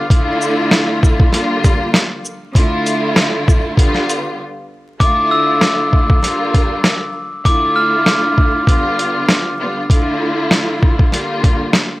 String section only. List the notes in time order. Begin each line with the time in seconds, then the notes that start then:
0.10 D3 A3 E4 F4
1.32 D3 G3 A#3 F4
2.55 D3 A3 E4 F4
3.78 D3 G3 B3 F4
5.00 D3 A3 E4 F4
6.23 D3 G3 A#3 F4
7.45 D3 A3 E4 F4
8.68 D3 G3 B3 F4
9.60 D3 G3 B3 F4
9.89 D3 A3 E4 F4
11.12 D3 G3 A#3 F4